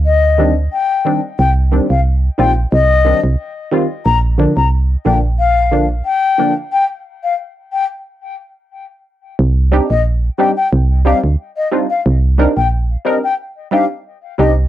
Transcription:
0.00 0.69 D2 loud
0.06 0.54 D#5 medium
0.38 0.53 D#3 medium
0.38 0.53 G3 medium
0.38 0.53 C4 medium
0.38 0.54 D4 medium
0.73 1.21 G5 medium
1.05 1.19 D#3 medium
1.05 1.20 G3 medium
1.05 1.20 C4 medium
1.05 1.20 D4 medium
1.39 1.80 C2 loud
1.39 1.51 G5 loud
1.72 1.86 D#3 medium
1.72 1.86 G3 medium
1.72 1.87 C4 medium
1.72 1.87 D4 medium
1.90 2.30 C2 loud
1.90 2.01 F5 medium
2.38 2.66 A#1 medium
2.38 2.53 D#3 medium
2.38 2.53 G3 medium
2.38 2.53 C4 medium
2.38 2.54 F4 medium
2.38 2.52 G5 medium
2.72 3.14 C2 loud
2.72 3.20 D#5 loud
3.05 3.19 D#3 medium
3.05 3.20 G3 medium
3.05 3.20 C4 medium
3.05 3.20 D4 medium
3.24 3.36 C2 loud
3.71 3.86 D#3 medium
3.71 3.86 G3 medium
3.71 3.87 C4 medium
3.71 3.87 F4 loud
4.06 4.47 A#1 loud
4.06 4.18 A#5 loud
4.38 4.53 D3 medium
4.38 4.53 F3 medium
4.38 4.53 A#3 medium
4.38 4.54 D4 medium
4.56 4.96 C2 loud
4.56 4.67 A#5 medium
5.05 6.02 A#1 medium
5.05 5.20 D3 medium
5.05 5.20 F3 medium
5.05 5.20 A#3 medium
5.05 5.20 D4 medium
5.05 5.18 G5 medium
5.39 5.87 F5 loud
5.72 5.86 D3 medium
5.72 5.86 F3 medium
5.72 5.87 A#3 medium
5.72 5.87 D4 medium
6.06 6.54 G5 medium
6.38 6.53 D3 medium
6.38 6.53 F3 medium
6.38 6.53 A#3 medium
6.38 6.54 D4 medium
6.73 6.85 G5 loud
7.24 7.34 F5 medium
7.73 7.85 G5 medium
9.39 9.80 C2 loud
9.72 9.86 G3 medium
9.72 9.86 C4 medium
9.72 9.87 D4 medium
9.72 9.87 D#4 medium
9.72 9.87 G4 medium
9.90 10.30 A#1 medium
9.90 10.01 D#5 medium
10.38 10.53 G3 medium
10.38 10.53 C4 medium
10.38 10.53 D4 medium
10.38 10.54 D#4 medium
10.38 10.54 G4 medium
10.38 10.51 G5 medium
10.57 10.68 G5 medium
10.73 11.14 C2 loud
11.05 11.20 G3 medium
11.05 11.20 C4 medium
11.05 11.20 D4 medium
11.05 11.20 D#4 medium
11.05 11.20 G4 medium
11.05 11.18 F5 medium
11.24 11.36 D2 medium
11.57 11.68 D#5 medium
11.71 11.86 G3 medium
11.71 11.86 C4 medium
11.71 11.87 D4 medium
11.71 11.87 D#4 medium
11.71 11.87 F4 medium
11.90 12.01 F5 medium
12.06 12.47 C2 loud
12.38 12.53 G3 medium
12.38 12.53 C4 medium
12.38 12.53 D4 medium
12.38 12.53 D#4 medium
12.38 12.54 A#4 medium
12.57 12.96 A#1 medium
12.57 12.68 G5 medium
13.05 13.19 G3 medium
13.05 13.20 C4 medium
13.05 13.20 D4 medium
13.05 13.20 D#4 medium
13.05 13.20 A#4 medium
13.05 13.18 D#5 medium
13.24 13.34 G5 medium
13.71 13.86 G3 medium
13.71 13.86 C4 medium
13.71 13.87 D4 medium
13.71 13.87 D#4 medium
13.71 13.87 G4 medium
13.71 13.85 F5 medium
14.38 14.66 C2 loud
14.38 14.53 G3 medium
14.38 14.53 C4 medium
14.38 14.53 D4 medium
14.38 14.54 D#4 medium
14.38 14.54 G4 medium
14.38 14.51 D#5 medium

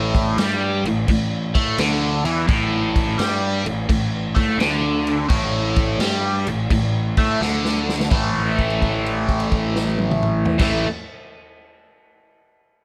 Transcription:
0.00 0.34 A1 loud
0.00 0.37 A2 loud
0.15 kick medium
0.15 crash medium
0.37 0.81 G2 loud
0.37 0.83 G3 loud
0.37 snare loud
0.37 crash medium
0.84 1.06 A1 medium
0.84 1.04 A2 medium
0.84 crash medium
1.08 1.52 A1 medium
1.08 1.46 A2 medium
1.08 kick medium
1.08 crash medium
1.55 1.77 A2 loud
1.55 1.78 A3 loud
1.55 kick medium
1.55 crash medium
1.78 2.22 D2 loud
1.78 2.24 D3 loud
1.78 snare loud
1.78 crash loud
2.24 2.47 E2 loud
2.24 2.47 E3 loud
2.24 crash medium
2.47 3.15 A1 medium
2.47 3.18 A2 loud
2.47 kick loud
2.47 crash medium
2.96 kick medium
2.96 crash medium
3.18 3.62 G2 loud
3.18 3.64 G3 loud
3.18 snare loud
3.18 crash medium
3.64 3.87 A1 medium
3.64 3.85 A2 medium
3.64 crash medium
3.89 4.33 A1 medium
3.89 4.27 A2 medium
3.89 kick loud
3.89 crash medium
4.35 4.57 A2 loud
4.35 4.59 A3 loud
4.35 kick medium
4.35 crash medium
4.58 5.25 D2 loud
4.58 5.28 D3 loud
4.58 snare loud
4.58 crash medium
5.07 crash medium
5.29 5.96 A1 medium
5.29 5.99 A2 loud
5.29 kick loud
5.29 crash medium
5.76 kick loud
5.76 crash medium
5.99 6.43 G2 loud
5.99 6.46 G3 loud
5.99 snare loud
5.99 crash medium
6.47 6.69 A1 medium
6.47 6.66 A2 medium
6.47 crash medium
6.70 7.14 A1 medium
6.70 7.09 A2 medium
6.70 kick medium
6.70 crash medium
7.17 7.39 A2 loud
7.17 7.40 A3 loud
7.17 kick medium
7.17 crash medium
7.40 8.07 D2 loud
7.40 8.10 D3 loud
7.40 snare medium
7.65 snare medium
7.89 snare loud
8.00 snare loud
8.10 10.44 A1 loud
8.10 10.58 A2 loud
8.10 10.60 E3 loud
8.10 10.62 A3 loud
8.10 kick loud
8.10 crash loud
8.59 kick medium
8.59 crash soft
8.70 crash soft
8.82 kick medium
8.82 crash soft
9.06 crash medium
9.29 kick medium
9.29 crash medium
9.40 crash medium
9.52 kick medium
9.52 crash medium
9.76 snare loud
9.98 high tom loud
10.11 mid tom loud
10.23 mid tom loud
10.45 floor tom loud
10.58 10.83 A1 loud
10.58 10.85 A2 loud
10.58 10.86 E3 loud
10.58 kick loud
10.58 snare loud
10.58 crash loud
10.63 10.87 A3 loud

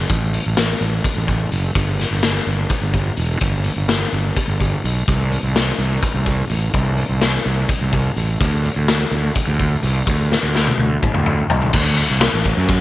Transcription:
0.10 0.37 A1 medium
0.10 kick loud
0.10 closed hi-hat medium
0.34 closed hi-hat medium
0.46 0.73 A1 medium
0.57 snare loud
0.57 closed hi-hat medium
0.81 0.99 A1 medium
0.81 closed hi-hat medium
1.04 kick loud
1.04 closed hi-hat medium
1.17 1.43 A1 medium
1.28 kick medium
1.28 closed hi-hat medium
1.52 1.70 F#1 medium
1.52 closed hi-hat medium
1.75 2.02 G1 loud
1.75 kick loud
1.75 closed hi-hat medium
1.99 snare soft
1.99 closed hi-hat medium
2.11 2.38 G1 medium
2.23 snare medium
2.23 closed hi-hat medium
2.46 2.65 G1 medium
2.46 closed hi-hat soft
2.70 kick loud
2.70 closed hi-hat medium
2.82 3.09 G1 medium
2.94 kick medium
2.94 closed hi-hat soft
3.17 3.35 E1 medium
3.17 closed hi-hat medium
3.41 3.69 G1 medium
3.41 kick loud
3.41 closed hi-hat medium
3.64 closed hi-hat medium
3.76 4.04 G1 medium
3.89 snare loud
3.89 closed hi-hat medium
4.12 4.31 G1 medium
4.12 closed hi-hat soft
4.37 kick medium
4.37 closed hi-hat medium
4.48 4.75 G1 medium
4.60 kick medium
4.60 closed hi-hat medium
4.84 5.02 B1 medium
4.84 closed hi-hat medium
5.08 5.35 C2 medium
5.08 kick loud
5.08 closed hi-hat medium
5.32 closed hi-hat medium
5.43 5.70 C2 medium
5.56 snare medium
5.56 closed hi-hat medium
5.78 5.97 C2 medium
5.78 closed hi-hat medium
6.03 kick loud
6.03 closed hi-hat medium
6.14 6.41 C2 medium
6.26 kick medium
6.26 closed hi-hat medium
6.50 6.68 A1 medium
6.50 closed hi-hat medium
6.74 7.01 C2 medium
6.74 kick loud
6.74 closed hi-hat medium
6.98 closed hi-hat medium
7.09 7.36 C2 medium
7.21 snare medium
7.21 closed hi-hat medium
7.46 7.64 C2 medium
7.46 closed hi-hat soft
7.69 kick loud
7.69 closed hi-hat medium
7.81 8.08 C2 medium
7.93 kick medium
7.93 closed hi-hat medium
8.16 8.35 A1 medium
8.16 closed hi-hat medium
8.41 8.68 D2 loud
8.41 kick medium
8.41 closed hi-hat medium
8.65 closed hi-hat medium
8.76 9.03 D2 medium
8.88 snare medium
8.88 closed hi-hat medium
9.11 9.30 D2 medium
9.11 closed hi-hat medium
9.35 kick loud
9.35 closed hi-hat medium
9.48 9.75 D2 medium
9.60 kick medium
9.60 closed hi-hat medium
9.83 10.01 C2 medium
9.83 closed hi-hat medium
10.07 10.34 D2 medium
10.07 kick loud
10.07 closed hi-hat medium
10.32 snare medium
10.43 10.70 D2 medium
10.55 snare medium
10.68 high tom medium
10.78 10.96 D2 medium
10.78 high tom medium
11.03 kick loud
11.03 mid tom medium
11.14 11.41 D2 medium
11.14 mid tom medium
11.26 mid tom medium
11.50 11.68 C2 medium
11.50 floor tom loud
11.62 floor tom medium
11.73 12.01 D2 loud
11.73 kick loud
11.73 crash loud
11.97 ride medium
12.10 12.28 C2 medium
12.21 snare loud
12.21 ride loud
12.34 12.51 A1 medium
12.45 kick medium
12.45 ride medium
12.57 12.81 F#2 loud
12.69 kick loud
12.69 ride loud

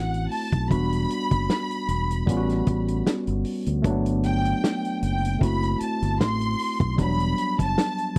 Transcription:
0.00 0.26 A1 medium
0.00 0.66 A3 medium
0.00 0.67 C4 medium
0.00 0.68 E4 medium
0.00 0.71 F#4 medium
0.00 0.28 F#5 medium
0.14 closed hi-hat soft
0.32 0.71 A5 loud
0.32 open hi-hat medium
0.52 0.68 B1 medium
0.52 kick medium
0.52 closed hi-hat medium
0.68 1.05 E1 loud
0.68 0.76 F#3 medium
0.68 2.24 B3 medium
0.68 2.25 D4 medium
0.68 3.02 B5 loud
0.68 kick loud
0.68 closed hi-hat medium
0.72 2.25 G3 medium
0.72 2.25 F#4 medium
0.93 closed hi-hat medium
1.10 closed hi-hat medium
1.31 1.47 F#1 medium
1.31 kick medium
1.31 closed hi-hat soft
1.50 snare loud
1.50 closed hi-hat medium
1.71 closed hi-hat soft
1.88 2.22 E1 medium
1.88 closed hi-hat medium
2.11 closed hi-hat medium
2.26 2.61 A1 loud
2.26 3.81 G3 medium
2.26 3.81 B3 medium
2.26 3.82 C#4 medium
2.26 kick medium
2.26 closed hi-hat medium
2.30 2.36 F4 medium
2.37 3.86 F#4 medium
2.49 snare soft
2.49 closed hi-hat soft
2.67 3.01 A1 medium
2.67 kick medium
2.67 closed hi-hat medium
2.88 closed hi-hat medium
3.07 snare loud
3.07 closed hi-hat medium
3.27 3.43 G1 medium
3.27 closed hi-hat soft
3.45 open hi-hat medium
3.66 3.82 D2 medium
3.66 closed hi-hat medium
3.82 4.52 G1 loud
3.82 5.37 A3 medium
3.82 3.91 A#3 medium
3.82 5.39 D4 medium
3.82 kick loud
3.82 closed hi-hat medium
3.86 5.39 F#3 medium
3.86 5.41 B3 medium
4.06 closed hi-hat medium
4.23 4.99 G5 loud
4.23 closed hi-hat medium
4.45 closed hi-hat soft
4.64 snare loud
4.64 closed hi-hat medium
4.85 closed hi-hat soft
5.03 5.36 F#1 loud
5.03 5.40 G5 medium
5.03 closed hi-hat medium
5.25 closed hi-hat medium
5.39 5.75 F#1 loud
5.39 6.94 A3 medium
5.39 6.95 C4 medium
5.39 6.96 E4 medium
5.39 kick medium
5.39 closed hi-hat medium
5.43 6.96 F#4 medium
5.43 5.79 B5 loud
5.63 closed hi-hat soft
5.80 6.21 A5 medium
5.80 muted fingered electric bass stroke soft
5.80 closed hi-hat medium
6.02 6.21 G1 loud
6.02 closed hi-hat medium
6.21 6.54 A1 medium
6.21 6.96 C6 loud
6.21 snare loud
6.21 closed hi-hat medium
6.41 closed hi-hat soft
6.59 open hi-hat medium
6.80 7.00 B1 medium
6.80 kick loud
6.80 closed hi-hat medium
6.96 7.32 E1 loud
6.96 8.19 G3 medium
6.96 8.19 B3 medium
6.96 8.19 D4 medium
6.96 kick loud
6.96 closed hi-hat medium
7.00 8.19 F#3 medium
7.00 7.56 B5 loud
7.20 closed hi-hat medium
7.38 closed hi-hat medium
7.59 7.75 F#1 medium
7.59 8.18 A5 loud
7.59 kick medium
7.59 closed hi-hat medium
7.78 snare loud
7.78 closed hi-hat medium
7.98 closed hi-hat soft

